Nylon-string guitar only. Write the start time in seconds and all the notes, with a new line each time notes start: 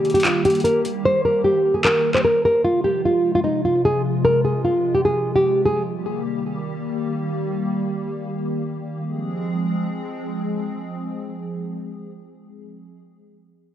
Already playing: G4
0.14 G4
0.25 F4
0.45 G4
0.64 A#4
1.05 C5
1.25 A#4
1.44 G4
1.74 G#4
1.85 A#4
2.15 C5
2.25 A#4
2.45 A#4
2.65 F4
2.84 G4
3.05 F4
3.35 F4
3.44 D#4
3.65 F4
3.85 G#4
4.25 A#4
4.45 G#4
4.65 F4
4.95 G4
5.05 G#4
5.35 G4
5.65 G#4